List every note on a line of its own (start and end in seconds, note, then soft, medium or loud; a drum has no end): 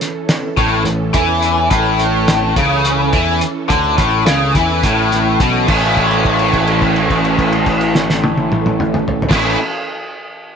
0.00 5.64 E3 medium
0.00 5.63 C#4 medium
0.00 5.63 A4 medium
0.00 snare soft
0.00 closed hi-hat medium
0.29 snare loud
0.29 closed hi-hat medium
0.57 0.84 A1 medium
0.57 0.84 A2 loud
0.57 kick loud
0.57 closed hi-hat medium
0.85 1.12 A1 medium
0.85 1.08 A2 medium
0.85 closed hi-hat medium
1.14 1.67 E2 medium
1.14 1.70 E3 loud
1.14 kick loud
1.14 closed hi-hat medium
1.42 closed hi-hat medium
1.70 2.52 A1 medium
1.70 2.55 A2 loud
1.70 kick loud
1.70 closed hi-hat medium
1.99 closed hi-hat medium
2.28 snare loud
2.28 closed hi-hat loud
2.56 3.09 C#2 medium
2.56 3.12 C#3 loud
2.56 kick loud
2.56 closed hi-hat medium
2.85 closed hi-hat medium
3.13 3.40 E2 medium
3.13 3.40 E3 loud
3.13 kick loud
3.13 closed hi-hat medium
3.41 closed hi-hat medium
3.69 3.96 D2 medium
3.69 3.97 D3 loud
3.69 kick loud
3.69 closed hi-hat medium
3.98 4.24 A1 medium
3.98 4.25 A2 medium
3.98 kick loud
3.98 snare soft
3.98 closed hi-hat medium
4.26 4.53 C#2 medium
4.26 4.54 C#3 loud
4.26 snare loud
4.26 closed hi-hat medium
4.55 4.81 E2 medium
4.55 4.83 E3 loud
4.55 kick loud
4.55 closed hi-hat medium
4.83 5.36 A1 medium
4.83 5.39 A2 medium
4.83 kick loud
4.83 closed hi-hat medium
5.12 snare soft
5.12 closed hi-hat medium
5.40 5.66 B1 medium
5.40 5.68 B2 loud
5.40 kick loud
5.40 closed hi-hat medium
5.67 9.20 A1 medium
5.67 9.23 A2 loud
5.67 9.23 E3 medium
5.67 9.20 E3 medium
5.67 9.24 A3 loud
5.67 9.20 C#4 medium
5.67 9.24 C#4 loud
5.67 9.20 A4 medium
5.67 kick loud
5.67 crash medium
5.71 9.25 E4 loud
5.97 kick medium
5.97 crash soft
6.11 crash soft
6.25 kick medium
6.25 crash soft
6.39 crash soft
6.53 kick medium
6.53 crash soft
6.67 crash soft
6.82 kick medium
6.82 crash soft
6.96 crash soft
7.10 kick medium
7.10 crash soft
7.25 crash soft
7.38 kick medium
7.38 crash medium
7.53 crash soft
7.66 kick medium
7.66 crash soft
7.81 crash medium
7.95 snare medium
8.10 snare medium
8.24 high tom loud
8.38 high tom medium
8.52 mid tom loud
8.66 mid tom medium
8.80 mid tom medium
8.94 mid tom loud
9.08 floor tom loud
9.22 floor tom loud
9.29 9.54 A1 medium
9.29 9.55 A2 loud
9.29 9.56 E3 medium
9.29 9.54 E3 medium
9.29 9.56 A3 medium
9.29 9.54 C#4 medium
9.29 9.57 C#4 loud
9.29 9.54 A4 medium
9.29 kick loud
9.29 snare medium
9.29 crash loud
9.33 9.57 E4 loud